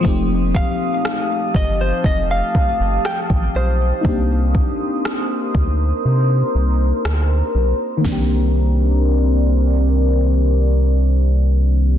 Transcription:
<<
  \new Staff \with { instrumentName = "Clean electric guitar" } { \time 4/4 \key c \dorian \tempo 4 = 60 r8 f''4 ees''16 c''16 ees''16 f''8. g''8 c''8~ | c''2. r4 | r1 | }
  \new Staff \with { instrumentName = "Ambient pad" } { \time 4/4 \key c \dorian << { <g' f'' ees'''>1 | <bes' c'' ees'''>1 | <c' bes' c'' d''>1 | } \\ { a''1 | c'''2 bes''2 | r1 | } >> }
  \new Staff \with { instrumentName = "FM electric piano" } { \time 4/4 \key c \dorian <f a c' ees' g'>1 | <bes c' d' ees' g'>1 | <ees bes c' d' g'>1 | }
  \new Staff \with { instrumentName = "Analog synth bass" } { \clef bass \time 4/4 \key c \dorian f,,8. r8. g,,8 f,,8 r16 g,,16 r16 a,,16 b,,8 | c,8. r8. d,8 c8 c,8 d,8 b,,16 r16 | c,1 | }
  \new DrumStaff \with { instrumentName = "Drums" } \drummode { \time 4/4 bd8 bd8 ss8 bd8 bd8 bd8 ss16 bd8. | bd8 bd8 ss8 bd8 r4 ss4 | <hho bd sn>4 r4 r4 r4 | }
>>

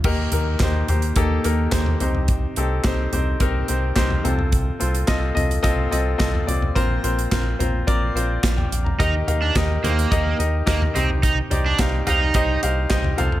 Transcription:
<<
  \new Staff \with { instrumentName = "Grand piano" } { \time 4/4 \key c \dorian \tempo 4 = 107 << { r1 | r1 | r1 | r2. f''16 g''8 bes''16~ |
bes''16 r2. r8. | r1 | } \\ { <bes ees' g' bes'>8 <bes ees' g' bes'>8 <bes ees' g' c''>8 <bes ees' g' c''>8 <bes ees' g' a'>8 <bes ees' g' bes'>8 <bes ees' g' c''>8 <c' ees' g' c''>8~ | <c' ees' g' c''>8 <c' ees' g' a'>8 <c' ees' g' c''>8 <c' ees' g' c''>8 <c' ees' g' bes'>8 <c' ees' g' c''>8 <c' ees' g' c''>8 <c' f' a' c''>8~ | <c' f' a' c''>8 <c' f' a' c''>8 <c' f' a' ees''>8 <c' f' a' ees''>8 <c' f' a' ees''>8 <c' f' a' ees''>8 <c' f' a' ees''>8 <c' f' a' d''>8 | <c' f' bes' c''>8 <c' f' bes' c''>8 <c' f' bes' c''>8 <c' f' bes' c''>8 <c' f' bes' d''>8 <c' f' bes' c''>8 r4 |
<ees' g' bes' ees''>8 <ees' g' bes' f''>8 <ees' g' bes' ees''>8 <ees' g' bes' c''>8 <ees' g' bes' ees''>8 <ees' g' bes' ees''>8 <ees' g' bes' ees''>8 <ees' g' c'' ees''>8~ | <ees' g' c'' ees''>8 <ees' g' c'' d''>8 <ees' g' c'' f''>8 <ees' g' c'' f''>8 <ees' g' c'' ees''>8 <ees' g' c'' f''>8 <ees' g' c'' ees''>8 <f' a' c'' f''>8 | } >> }
  \new Staff \with { instrumentName = "Grand piano" } { \clef bass \time 4/4 \key c \dorian ees4. r2 c8~ | c4 r2 r8 c8~ | c4 r2. | bes,4. r2 r8 |
ees4. r2 c8~ | c4 r2 r8 c8 | }
  \new Staff \with { instrumentName = "Overdriven electric guitar" } { \time 4/4 \key c \dorian r1 | r1 | r1 | r1 |
ees'16 r8 d'16 r8 bes4 r8 bes16 r16 c'16 r16 | ees'16 r8 d'16 r8 ees'4 r4. | }
  \new Staff \with { instrumentName = "Analog synth bass" } { \clef bass \time 4/4 \key c \dorian ees,8 ees,8 ees,8 ees,8 ees,8 ees,8 ees,8 c,8~ | c,8 c,8 c,8 c,8 c,8 c,8 c,8 c,8~ | c,8 c,8 c,8 c,8 c,8 c,8 c,8 c,8 | bes,,8 bes,,8 bes,,8 bes,,8 bes,,8 bes,,8 bes,,8 bes,,8 |
ees,8 ees,8 ees,8 ees,8 ees,8 ees,8 ees,8 c,8~ | c,8 c,8 c,8 c,8 c,8 c,8 c,8 c,8 | }
  \new DrumStaff \with { instrumentName = "Drums" } \drummode { \time 4/4 <cymc bd>8 <hh tomfh>8 <hc hh bd sn>8 <hh tomfh>16 hh16 <hh bd>8 hh8 <hc hh bd sn>16 tomfh16 hh16 tomfh16 | <hh bd>8 hh8 <hc hh bd sn>8 <hh tomfh>8 <hh bd>8 hh8 <hc hh bd sn>16 tomfh16 hh16 tomfh16 | <hh bd>8 hh16 hh16 <hc hh bd sn>8 <hh tomfh>16 hh16 <hh bd>8 hh8 <hc hh bd sn>16 tomfh16 hh16 tomfh16 | <hh bd>8 hh16 hh16 <hc hh bd sn>8 <hh tomfh>8 <hh bd>8 hh8 <hc hh bd sn>16 tomfh16 hh16 tomfh16 |
<hh bd>8 <hh tomfh>8 <hc hh bd sn>8 <hh tomfh>16 hh16 <hh bd>8 hh8 <hc hh bd sn>16 tomfh16 hh16 tomfh16 | <hh bd>8 <hh tomfh>8 <hc hh bd sn>8 <hh tomfh>8 <hh bd>8 hh8 <hc hh bd sn>16 tomfh16 hh16 tomfh16 | }
>>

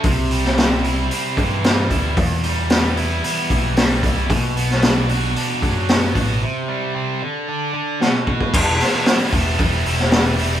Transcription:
<<
  \new Staff \with { instrumentName = "Overdriven electric guitar" } { \time 4/4 \key e \minor \tempo 4 = 113 c8 g8 c'8 e'8 c'8 e8 g8 e'8 | e,8 g8 b8 e'8 b8 e8 g8 e'8 | b,8 b8 d'8 fis'8 d'8 fis8 b8 fis'8 | c8 g8 c'8 d8 d'8 d8 b,8 fis'8 |
<e g b e'>8 <e g b e'>8 <e g b e'>8 <e g b e'>8 <e g b e'>8 <e g b e'>8 <e g b e'>8 <e g b e'>8 | }
  \new Staff \with { instrumentName = "Picked electric bass" } { \clef bass \time 4/4 \key e \minor c,2 r8 g,4 d,8 | e,2 r8 b,,4 c,8 | b,,2 r8 fis,4 a,,8 | r1 |
e,,8 r4 e,,8 e,,8 e,,4. | }
  \new DrumStaff \with { instrumentName = "Drums" } \drummode { \time 4/4 <hho bd>8 hho16 sn16 <hho sn>8 hho8 hho8 <hho bd>8 <hho sn>8 <hho bd>8 | <hho bd>8 hho8 <hho sn>8 hho8 hho8 <hho bd>8 <hho sn>8 <hho bd>8 | <hho bd>8 hho16 sn16 <hho sn>8 hho8 hho8 <hho bd>8 <hho sn>8 <hho bd>8 | r4 r4 r4 sn8 bd16 bd16 |
<cymc bd>8 <hho sn>8 <hho sn>8 <hho bd>8 <hho bd>8 hho16 sn16 <hho sn>8 hho8 | }
>>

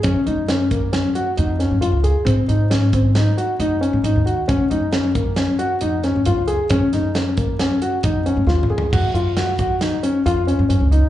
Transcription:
<<
  \new Staff \with { instrumentName = "Grand piano" } { \time 5/4 \key ges \lydian \tempo 4 = 135 des'8 ees'8 des'8 bes8 des'8 ges'8 ees'8 des'8 f'8 aes'8 | c'8 ees'8 des'8 c'8 ees'8 ges'8 ees'8 des'8 ees'8 ges'8 | des'8 ees'8 des'8 bes8 des'8 ges'8 ees'8 des'8 f'8 aes'8 | des'8 ees'8 des'8 bes8 des'8 ges'8 ees'8 des'8 f'8 aes'8 |
ges'8 f'8 ges'8 ges'8 ees'8 des'8 f'8 des'8 des'8 ees'8 | }
  \new Staff \with { instrumentName = "Upright bass" } { \clef bass \time 5/4 \key ges \lydian ges,16 r16 ges,2 r8 f,8. ges,16 ges,16 des,8 r16 | aes,16 r16 aes,2 r8 ges,8. aes,16 aes,16 ees,8 r16 | ges,16 r16 ges,2 r8 f,8. ges,16 ges,16 des,8 r16 | ges,16 r16 ges,2 r8 f,8. ges,16 ees,8 f,8 |
ges,16 r16 ges,2 r8 f,8. ges,16 ges,16 des,8 r16 | }
  \new DrumStaff \with { instrumentName = "Drums" } \drummode { \time 5/4 <hh bd>8 hh8 <hh sn>8 <hh bd>8 <hh sn>8 hh8 hh8 <hh sn>8 hh8 hh8 | <hh bd>8 hh8 <hh sn>8 <hh bd>8 <hh sn>8 hh8 hh8 hh8 hh8 hh8 | <hh bd>8 hh8 <hh sn>8 <hh bd>8 <hh sn>8 hh8 hh8 <hh sn>8 hh8 hh8 | <hh bd>8 <hh sn>8 <hh sn>8 <hh bd>8 <hh sn>8 hh8 <hh bd>8 hh8 \tuplet 3/2 { sn8 toml8 tomfh8 } |
<cymc bd>8 hh8 <hh sn>8 <hh bd>8 <hh sn>8 hh8 hh8 hh8 hh8 hh8 | }
>>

